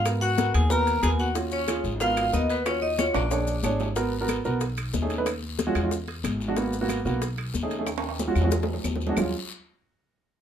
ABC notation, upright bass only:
X:1
M:4/4
L:1/8
Q:1/4=184
K:Ebm
V:1 name="Upright bass" clef=bass
A,,3 E,,3 E,,2- | E,,3 A,,,3 E,,2- | E,,3 B,,,3 A,,,2- | A,,,3 C,,3 ^D,,2- |
^D,,3 _F,,3 ^G,,,2- | ^G,,,3 C,,3 ^D,,2- | ^D,,3 _F,,3 E,,2 | E,, z6 z |]